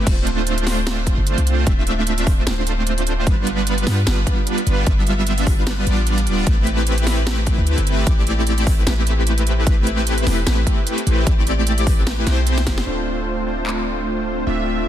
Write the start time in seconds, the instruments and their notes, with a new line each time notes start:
0.07 808-style bass D1, analog polysynth A3 C4 D4 F4 C5, kick, closed hi-hat, crash
0.27 closed hi-hat
0.47 closed hi-hat
0.58 closed hi-hat
0.67 analog polysynth A3 C4 D4 F4 C5, snare, open hi-hat
0.87 snare, closed hi-hat
1.07 kick, closed hi-hat
1.18 808-style bass G1
1.27 closed hi-hat
1.38 808-style bass C2, closed hi-hat
1.47 closed hi-hat
1.67 808-style bass D1, analog polysynth A3 C4 D4 F4 E5, kick, closed hi-hat
1.87 closed hi-hat
2.07 closed hi-hat
2.18 closed hi-hat
2.27 analog polysynth A3 C4 D4 F4 C5, kick, open hi-hat
2.47 808-style bass D1, snare, closed hi-hat
2.67 closed hi-hat
2.87 closed hi-hat
2.98 closed hi-hat
3.07 closed hi-hat
3.27 808-style bass G1, analog polysynth G3 B3 D4 F4 B4, kick, closed hi-hat
3.47 closed hi-hat
3.67 closed hi-hat
3.78 closed hi-hat
3.87 808-style bass G2, analog polysynth G3 B3 D4 F4 B4, snare, open hi-hat
4.07 808-style bass G1, snare, closed hi-hat
4.27 kick, closed hi-hat
4.47 closed hi-hat
4.58 closed hi-hat
4.67 808-style bass G1, closed hi-hat
4.87 808-style bass G1, analog polysynth G3 B3 D4 F4 E5, kick, closed hi-hat
5.07 closed hi-hat
5.27 closed hi-hat
5.38 closed hi-hat
5.47 analog polysynth G3 B3 D4 F4 B4, kick, open hi-hat
5.67 snare, closed hi-hat
5.87 808-style bass A1, analog polysynth G3 B3 D4 F4 D5, closed hi-hat
6.07 closed hi-hat
6.18 closed hi-hat
6.27 808-style bass D1, closed hi-hat
6.47 808-style bass A1, analog polysynth A3 C4 E4 G4 B4, kick, closed hi-hat
6.67 closed hi-hat
6.87 closed hi-hat
6.98 closed hi-hat
7.07 analog polysynth A3 C4 E4 G4 B4, snare, open hi-hat
7.27 snare, closed hi-hat
7.47 kick, closed hi-hat
7.58 808-style bass D2
7.67 closed hi-hat
7.78 808-style bass G1, closed hi-hat
7.87 closed hi-hat
8.07 808-style bass A1, analog polysynth A3 C4 E4 G4 D5, kick, closed hi-hat
8.27 closed hi-hat
8.47 closed hi-hat
8.58 closed hi-hat
8.67 analog polysynth A3 C4 E4 G4 B4, kick, open hi-hat
8.87 808-style bass A1, snare, closed hi-hat
9.07 closed hi-hat
9.27 closed hi-hat
9.38 closed hi-hat
9.47 closed hi-hat
9.67 analog polysynth A3 C4 E4 G4 B4, kick, closed hi-hat
9.87 closed hi-hat
10.07 closed hi-hat
10.18 closed hi-hat
10.27 808-style bass E1, analog polysynth A3 C4 E4 G4 B4, snare, open hi-hat
10.47 808-style bass A1, snare, closed hi-hat
10.67 kick, closed hi-hat
10.87 closed hi-hat
10.98 closed hi-hat
11.07 808-style bass A1, closed hi-hat
11.27 808-style bass A1, analog polysynth A3 C4 E4 G4 D5, kick, closed hi-hat
11.47 closed hi-hat
11.67 closed hi-hat
11.78 closed hi-hat
11.87 analog polysynth A3 C4 E4 G4 B4, kick, open hi-hat
12.07 snare, closed hi-hat
12.27 808-style bass B1, analog polysynth A3 C4 E4 G4 C5, snare, closed hi-hat
12.47 closed hi-hat
12.58 snare, closed hi-hat
12.67 808-style bass E1, kick, snare, closed hi-hat
12.78 snare
12.87 808-style bass D1, analog polysynth A3 C4 D4 F4 C5
13.47 analog polysynth A3 C4 D4 F4 C5
13.67 clap
14.47 808-style bass D1, analog polysynth A3 C4 D4 F4 E5